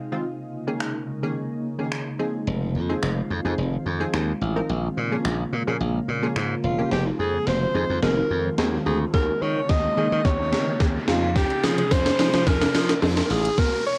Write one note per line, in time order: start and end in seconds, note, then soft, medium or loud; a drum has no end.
0.00 0.23 C3 medium
0.00 6.88 G#3 medium
0.00 2.15 D#4 medium
0.00 0.23 F4 medium
0.12 0.25 D#3 medium
0.12 0.25 G#3 medium
0.12 0.25 C4 medium
0.12 0.25 F4 loud
0.25 2.18 C#3 medium
0.25 2.18 A#3 medium
0.67 0.96 D#3 loud
0.67 0.96 A#3 medium
0.67 0.96 C#4 medium
0.67 0.96 G#4 loud
0.80 finger snap loud
1.23 1.51 D#3 loud
1.23 1.51 A#3 medium
1.23 1.51 C#4 medium
1.23 1.51 G#4 loud
1.78 2.07 D#3 loud
1.78 2.07 A#3 medium
1.78 2.07 C#4 medium
1.78 2.07 G#4 loud
1.92 finger snap loud
2.19 4.67 D#3 medium
2.19 2.75 F3 loud
2.19 2.75 C4 medium
2.19 4.67 C4 medium
2.19 2.75 D#4 medium
2.19 6.88 F4 medium
2.19 2.75 G#4 loud
2.47 2.76 F1 loud
2.75 2.93 F2 loud
2.89 3.18 F3 medium
2.89 3.18 C4 medium
2.89 3.18 D#4 medium
2.89 3.18 G#4 loud
3.03 3.21 F1 loud
3.03 finger snap loud
3.31 3.40 F2 loud
3.45 3.54 F2 medium
3.45 3.73 F3 loud
3.45 3.74 C4 medium
3.45 3.74 D#4 medium
3.45 3.74 G#4 loud
3.58 3.76 F1 loud
3.86 4.04 F2 loud
4.00 4.29 F3 loud
4.00 4.29 C4 medium
4.00 4.29 D#4 medium
4.00 4.29 G#4 loud
4.14 4.32 D#2 loud
4.14 finger snap loud
4.41 4.60 A1 medium
4.56 4.69 F3 medium
4.56 4.69 C4 medium
4.56 4.69 D#4 medium
4.56 4.69 A#4 loud
4.69 4.87 A#1 loud
4.69 6.89 C#3 medium
4.69 6.89 A#3 medium
4.97 5.15 A#2 medium
5.11 5.40 F3 medium
5.11 5.40 A#3 medium
5.11 5.40 C#4 medium
5.11 5.40 G#4 loud
5.25 5.43 A#1 medium
5.25 finger snap loud
5.53 5.62 A#2 loud
5.67 5.76 A#2 medium
5.67 5.96 F3 medium
5.67 5.96 A#3 medium
5.67 5.96 C#4 medium
5.67 5.96 G#4 loud
5.80 5.98 A#1 loud
6.08 6.26 A#2 medium
6.22 6.51 F3 loud
6.22 6.51 A#3 loud
6.22 6.51 C#4 medium
6.22 6.51 G#4 loud
6.36 6.54 G#2 medium
6.36 finger snap loud
6.63 6.82 E1 medium
6.63 6.89 F4 medium
6.78 6.90 F3 medium
6.78 6.91 A#3 medium
6.78 6.92 C#4 medium
6.78 6.92 G4 loud
6.91 7.10 F1 medium
6.91 9.12 D#3 medium
6.91 7.35 F3 medium
6.91 7.01 F3 medium
6.91 13.54 G#3 medium
6.91 7.35 C4 medium
6.91 9.12 C4 medium
6.91 7.35 D#4 medium
6.91 9.12 F4 medium
6.91 7.04 G4 medium
6.91 7.35 G#4 medium
6.91 snare medium
6.91 riser medium
7.06 7.15 D#4 medium
7.19 7.37 F2 medium
7.19 7.48 G#4 medium
7.34 7.43 F3 medium
7.47 7.65 F1 medium
7.47 7.57 F3 medium
7.47 8.02 C5 loud
7.47 snare medium
7.62 7.70 F3 medium
7.75 7.84 F2 medium
7.75 7.90 F3 medium
7.75 7.90 C4 medium
7.75 7.84 D#4 medium
7.75 7.90 D#4 medium
7.75 7.90 G#4 medium
7.90 7.98 F2 medium
8.02 8.21 F1 loud
8.02 8.31 F3 medium
8.02 8.12 F3 medium
8.02 8.31 C4 medium
8.02 8.31 D#4 medium
8.02 8.31 G#4 medium
8.02 8.54 A#4 medium
8.02 snare medium
8.17 8.26 D#4 medium
8.30 8.48 F2 medium
8.45 8.54 F3 medium
8.58 8.76 D#2 medium
8.58 8.87 F3 medium
8.58 8.87 C4 medium
8.58 8.87 D#4 medium
8.58 8.87 G#4 medium
8.58 snare medium
8.86 9.04 D2 medium
8.86 8.98 G#4 medium
9.13 9.32 D#2 loud
9.13 11.06 C#3 medium
9.13 9.57 D#3 medium
9.13 9.23 D#3 medium
9.13 9.57 A#3 medium
9.13 11.06 A#3 medium
9.13 9.57 C#4 medium
9.13 13.54 D#4 medium
9.13 9.57 G#4 medium
9.13 9.43 A#4 loud
9.13 kick loud
9.13 snare medium
9.28 9.37 C#4 medium
9.42 9.60 D#3 loud
9.42 9.71 C#5 medium
9.56 9.65 D#3 medium
9.69 9.88 D#2 loud
9.69 9.79 D#3 medium
9.69 10.26 D#5 loud
9.69 kick loud
9.69 snare medium
9.84 9.93 D#3 medium
9.97 10.12 D#3 medium
9.97 10.07 D#3 medium
9.97 10.12 A#3 medium
9.97 10.07 C#4 medium
9.97 10.12 C#4 medium
9.97 10.12 G#4 loud
10.12 10.20 D#3 medium
10.25 10.54 D#2 loud
10.25 10.53 D#3 medium
10.25 10.34 D#3 medium
10.25 10.53 A#3 medium
10.25 10.53 C#4 medium
10.25 10.54 D#4 medium
10.25 10.80 C#5 medium
10.25 kick loud
10.25 snare medium
10.39 10.48 C#4 medium
10.52 10.71 D#3 loud
10.52 snare medium
10.67 10.76 D#3 medium
10.80 10.98 D#2 loud
10.80 11.08 D#3 medium
10.80 11.08 A#3 medium
10.80 11.08 C#4 medium
10.80 11.07 G#4 medium
10.80 kick loud
10.80 snare medium
11.08 11.44 F2 loud
11.08 13.56 C3 medium
11.08 11.97 F3 medium
11.08 13.56 F3 medium
11.08 11.97 C4 medium
11.08 11.97 D#4 medium
11.08 11.37 F4 medium
11.08 11.98 G#4 medium
11.08 snare medium
11.36 11.45 F3 medium
11.36 11.65 G4 medium
11.36 kick loud
11.36 snare medium
11.36 tambourine soft
11.50 11.59 D#4 medium
11.50 closed hi-hat medium
11.63 11.82 F3 loud
11.63 11.93 G#4 medium
11.63 snare loud
11.63 open hi-hat medium
11.63 tambourine soft
11.78 11.87 F3 medium
11.78 closed hi-hat medium
11.78 tambourine soft
11.91 12.10 F2 loud
11.91 12.01 F3 medium
11.91 12.49 C5 loud
11.91 kick loud
11.91 snare medium
11.91 tambourine medium
12.06 12.15 F3 medium
12.06 snare loud
12.06 closed hi-hat medium
12.19 12.34 F3 medium
12.19 12.29 F3 loud
12.19 12.34 C4 medium
12.19 12.29 D#4 medium
12.19 12.34 D#4 medium
12.19 12.34 G#4 loud
12.19 snare loud
12.19 open hi-hat medium
12.19 tambourine soft
12.34 12.42 F3 medium
12.34 snare loud
12.34 closed hi-hat medium
12.46 12.65 F2 loud
12.46 12.75 F3 medium
12.46 12.56 F3 medium
12.46 12.75 C4 medium
12.46 12.75 D#4 medium
12.46 12.76 G#4 loud
12.46 13.03 A#4 medium
12.46 kick loud
12.46 snare loud
12.46 tambourine soft
12.61 12.70 D#4 medium
12.61 snare loud
12.61 closed hi-hat medium
12.61 tambourine soft
12.74 12.93 F3 loud
12.74 snare loud
12.74 open hi-hat medium
12.74 tambourine medium
12.89 12.98 F3 medium
12.89 snare loud
12.89 closed hi-hat medium
13.02 13.21 F2 medium
13.02 13.31 F3 medium
13.02 13.31 C4 medium
13.02 13.31 D#4 medium
13.02 13.31 G#4 loud
13.02 snare loud
13.02 tambourine medium
13.17 snare loud
13.17 closed hi-hat medium
13.17 tambourine soft
13.24 13.32 A#4 medium
13.30 13.48 A1 medium
13.30 13.60 G#4 medium
13.30 open hi-hat medium
13.45 closed hi-hat medium
13.58 13.86 A#4 loud
13.58 kick loud
13.58 snare medium
13.86 13.98 C#5 loud